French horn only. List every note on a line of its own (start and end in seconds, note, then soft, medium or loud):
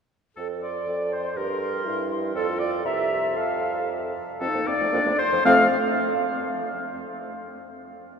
0.86 1.38 A4 medium
1.36 1.87 G4 medium
1.85 2.35 E4 medium
2.36 2.85 F4 medium
2.86 3.36 G4 medium
3.37 4.14 A4 soft
4.41 4.47 C4 medium
4.55 4.61 A#3 soft
4.68 4.73 C4 medium
4.81 4.86 A3 medium
4.92 4.98 A#3 medium
5.06 5.12 A3 medium
5.32 5.38 F3 medium
5.44 5.66 A3 medium